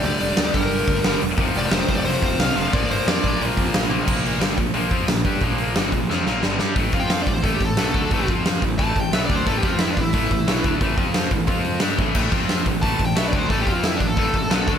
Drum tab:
CC |--------|--------|--------|x-------|
HH |oooooooo|oooooooo|ooooooo-|-ooooooo|
SD |--o---o-|--o---o-|--o---o-|--o---o-|
T1 |--------|--------|-------o|--------|
BD |---o-o--|o--o-o--|o--o-o--|o--o-o-o|

CC |--------|--------|--------|--------|
HH |oooo----|oooooooo|oooooooo|oooooooo|
SD |--o-oooo|--o---o-|--o---o-|--o---o-|
T1 |--------|--------|--------|--------|
BD |o--o----|oo-ooo-o|oo-ooo-o|oo-ooo-o|

CC |--------|x-------|--------|
HH |oooooooo|-ooooooo|oooooooo|
SD |--o---o-|--o---o-|--o---o-|
T1 |--------|--------|--------|
BD |oo-oo--o|oo-ooo-o|oo-ooo-o|